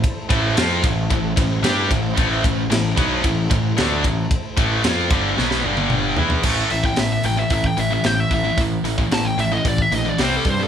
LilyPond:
<<
  \new Staff \with { instrumentName = "Lead electric guitar" } { \time 4/4 \key a \minor \tempo 4 = 112 r1 | r1 | r1 | r8 e''16 g''16 e''16 e''16 g''16 e''16 e''16 g''16 e''16 e''16 g''16 e''16 e''8 |
r4 a''16 g''16 e''16 dis''16 d''16 e''16 dis''16 d''16 c''16 a'16 c''16 a'16 | }
  \new Staff \with { instrumentName = "String section" } { \time 4/4 \key a \minor << { <a e' c''>1~ | <a e' c''>1~ | <a e' c''>2~ <a e' c''>8 <g d' g''>4 <a e' c''>8 | r1 |
r1 | } \\ { a'1~ | a'1~ | a'1 | r1 |
r1 | } >> }
  \new Staff \with { instrumentName = "Distorted electric guitar" } { \clef bass \time 4/4 \key a \minor r8 <a, e a>8 <f c' f'>8 <a, e>8 <a, e>8 <a, e>8 <g d' g'>8 <a, e>8 | <a, e a>8 <a, e>8 <a, e>8 <b, fis b>8 <a, e>8 <a, e>8 <d a d'>8 <a, e>8 | r8 <a, e a>8 <f c' f'>8 <g, d g>8 <b, fis b>8 <g, d g>4 <e b e'>8 | <a, e a>8 <a, e>16 <a, e>16 <a, e>8 <a, e>16 <a, e>16 <a, e>8 <a, e>16 <a, e>16 <a, e>8 <a, e>16 <a, e>16 |
<a, e>8 <a, e>16 <a, e>16 <a, e>8 <a, e>16 <a, e>16 <a, e>8 <a, e>16 <a, e>16 <c g c'>8 <c g>16 <c g>16 | }
  \new Staff \with { instrumentName = "Distorted electric guitar" } { \clef bass \time 4/4 \key a \minor r8 <a, e a>8 <f c' f'>8 <a, e>8 <a, e>8 <a, e>8 <g d' g'>8 <a, e>8 | <a, e a>8 <a, e>8 <a, e>8 <b, fis b>8 <a, e>8 <a, e>8 <d a d'>8 <a, e>8 | r8 <a, e a>8 <f c' f'>8 <g, d g>8 <b, fis b>8 <g, d g>4 <e b e'>8 | <a, e a>8 <a, e>16 <a, e>16 <a, e>8 <a, e>16 <a, e>16 <a, e>8 <a, e>16 <a, e>16 <a, e>8 <a, e>16 <a, e>16 |
<a, e>8 <a, e>16 <a, e>16 <a, e>8 <a, e>16 <a, e>16 <a, e>8 <a, e>16 <a, e>16 <c g c'>8 <c g>16 <c g>16 | }
  \new Staff \with { instrumentName = "Picked electric bass" } { \clef bass \time 4/4 \key a \minor r8 a,,8 f,8 a,,8 a,,8 a,,8 g,8 a,,8 | a,,8 a,,8 a,,8 b,,8 a,,8 a,,8 d,8 a,,8 | r8 a,,8 f,8 g,,8 b,,8 g,,4 e,8 | a,,8 a,,8 a,,8 a,,8 a,,8 a,,8 a,,8 a,,8 |
a,,8 a,,8 a,,8 a,,8 a,,8 bes,,8 c,8 g,8 | }
  \new DrumStaff \with { instrumentName = "Drums" } \drummode { \time 4/4 <bd cymr>8 <bd cymr>8 <cymr sn>8 <bd cymr>8 <bd cymr>8 <bd cymr>8 <cymr sn>8 <bd cymr>8 | <bd cymr>8 <bd cymr>8 <cymr sn>8 <bd cymr>8 <bd cymr>8 <bd cymr>8 <cymr sn>8 <bd cymr>8 | <bd cymr>8 <bd cymr>8 <cymr sn>8 <bd cymr>8 sn16 sn8 tommh16 toml8 tomfh16 tomfh16 | <cymc bd>8 hho16 bd16 <hho sn>8 hho8 <hho bd>16 bd16 hho8 <hho sn>8 <hho bd>8 |
<hho bd>8 hho16 bd16 <hho sn>8 hho8 <hho bd>16 bd16 hho8 <hho sn>8 <hho bd>8 | }
>>